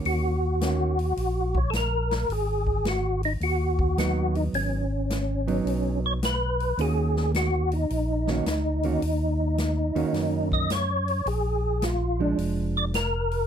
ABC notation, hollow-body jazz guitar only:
X:1
M:4/4
L:1/8
Q:"Swing" 1/4=107
K:Ebm
V:1 name="Hollow-body jazz guitar"
[E,B,DG] z [E,B,DG] z4 z | z6 [G,CE]2- | [G,CE] z2 [G,CE]3 z2 | [E,B,DG]3 z2 [E,B,DG] z [E,B,DG] |
z3 [E,B,DG]3 z2 | z3 [F,A,=D]3 z2 |]